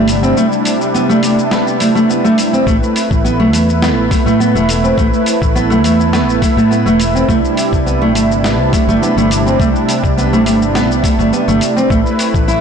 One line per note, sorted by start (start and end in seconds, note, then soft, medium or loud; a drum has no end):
0.00 0.32 G1 medium
0.00 2.63 C3 medium
0.00 2.63 G3 medium
0.00 2.63 D4 medium
0.00 11.86 E4 loud
0.08 open hi-hat medium
0.08 shaker medium
0.23 0.36 C4 medium
0.23 shaker soft
0.37 0.45 A3 loud
0.37 shaker soft
0.52 shaker soft
0.65 open hi-hat loud
0.65 shaker medium
0.81 shaker soft
0.94 1.09 B3 loud
0.94 shaker soft
1.09 1.22 A3 loud
1.09 shaker soft
1.23 1.37 A3 medium
1.23 open hi-hat medium
1.23 shaker medium
1.39 shaker soft
1.51 1.79 B3 medium
1.51 snare medium
1.51 shaker soft
1.67 shaker soft
1.80 1.94 A3 medium
1.80 open hi-hat medium
1.80 shaker medium
1.95 2.08 A3 loud
1.95 shaker soft
2.09 2.24 B3 medium
2.09 shaker soft
2.24 2.37 A3 loud
2.24 shaker soft
2.38 open hi-hat medium
2.38 shaker medium
2.53 2.66 C4 medium
2.53 shaker soft
2.67 2.79 A1 loud
2.67 2.76 A3 loud
2.67 7.25 A3 medium
2.67 7.25 B4 medium
2.67 kick loud
2.67 shaker soft
2.83 shaker soft
2.96 open hi-hat loud
2.96 shaker medium
3.11 3.53 A1 medium
3.11 kick loud
3.11 shaker soft
3.24 3.39 B3 loud
3.24 shaker soft
3.40 3.52 A3 loud
3.53 3.97 E2 medium
3.53 3.68 A3 medium
3.53 open hi-hat medium
3.53 shaker medium
3.69 shaker soft
3.82 4.10 B3 medium
3.82 snare medium
3.82 shaker soft
3.97 4.09 A1 medium
4.11 4.25 A3 medium
4.11 kick loud
4.11 open hi-hat medium
4.11 shaker medium
4.26 4.56 A2 loud
4.26 4.39 A3 loud
4.26 shaker soft
4.40 4.55 B3 loud
4.40 shaker soft
4.54 4.93 E1 medium
4.54 4.68 A3 loud
4.54 shaker soft
4.69 open hi-hat loud
4.69 shaker medium
4.84 4.97 C4 medium
4.84 shaker soft
4.98 5.10 A1 loud
4.98 5.06 A3 loud
4.98 kick loud
4.98 shaker soft
5.14 shaker soft
5.26 open hi-hat medium
5.26 shaker medium
5.42 5.84 A1 medium
5.42 kick loud
5.42 shaker soft
5.55 5.70 B3 loud
5.55 shaker soft
5.70 5.83 A3 loud
5.70 shaker soft
5.84 6.28 E2 medium
5.84 5.99 A3 medium
5.84 open hi-hat medium
5.84 shaker medium
6.00 shaker soft
6.13 6.41 B3 medium
6.13 snare medium
6.13 shaker soft
6.28 6.39 A1 medium
6.28 shaker soft
6.42 6.56 A3 medium
6.42 kick loud
6.42 open hi-hat medium
6.42 shaker medium
6.57 6.87 A2 medium
6.57 6.70 A3 medium
6.57 shaker soft
6.71 6.85 B3 medium
6.71 shaker soft
6.85 7.24 E1 medium
6.85 6.99 A3 loud
6.85 shaker soft
7.00 open hi-hat medium
7.00 shaker medium
7.15 7.28 C4 medium
7.15 shaker soft
7.28 7.41 C2 medium
7.28 11.86 C3 medium
7.28 11.86 G3 medium
7.28 7.37 A3 loud
7.28 11.86 D4 medium
7.28 kick loud
7.28 shaker soft
7.45 shaker soft
7.57 open hi-hat medium
7.57 shaker medium
7.73 8.15 C2 medium
7.73 kick loud
7.73 shaker soft
7.86 8.01 B3 loud
7.86 shaker soft
8.02 8.14 A3 loud
8.15 8.59 G1 medium
8.15 8.30 A3 medium
8.15 open hi-hat medium
8.15 shaker medium
8.32 shaker soft
8.44 8.72 B3 medium
8.44 snare medium
8.44 shaker soft
8.59 8.70 C2 medium
8.73 8.87 A3 medium
8.73 kick loud
8.73 open hi-hat medium
8.73 shaker medium
8.87 8.99 G1 medium
8.87 9.01 A3 loud
8.87 shaker soft
9.02 9.16 B3 loud
9.02 shaker soft
9.16 9.55 G1 medium
9.16 9.30 A3 loud
9.16 shaker soft
9.31 open hi-hat medium
9.31 shaker medium
9.46 9.59 C4 medium
9.46 shaker soft
9.59 9.72 C2 loud
9.59 9.68 A3 loud
9.59 kick loud
9.59 shaker soft
9.76 shaker soft
9.89 open hi-hat medium
9.89 shaker medium
10.04 10.46 C2 medium
10.04 kick loud
10.04 shaker soft
10.18 10.32 B3 loud
10.18 shaker soft
10.33 10.45 A3 loud
10.33 shaker soft
10.46 10.90 G1 medium
10.46 10.61 A3 medium
10.46 open hi-hat medium
10.46 shaker medium
10.62 shaker soft
10.75 11.03 B3 medium
10.75 snare medium
10.75 shaker soft
10.90 11.01 C2 medium
10.90 shaker soft
11.04 11.18 A3 medium
11.04 kick loud
11.04 open hi-hat medium
11.04 shaker medium
11.19 11.30 G1 medium
11.19 11.31 A3 loud
11.19 shaker soft
11.33 11.47 B3 loud
11.33 shaker soft
11.48 11.59 G1 medium
11.48 11.61 A3 loud
11.48 shaker soft
11.61 open hi-hat medium
11.61 shaker medium
11.77 11.90 C4 medium
11.77 shaker soft
11.90 12.03 A1 medium
11.90 11.99 A3 loud
11.90 12.61 A3 medium
11.90 12.61 E4 medium
11.90 12.61 B4 medium
11.90 kick loud
11.90 shaker soft
12.06 shaker soft
12.19 open hi-hat medium
12.19 shaker medium
12.34 12.61 A1 medium
12.34 kick loud
12.34 shaker soft
12.48 12.61 E4 medium
12.48 shaker soft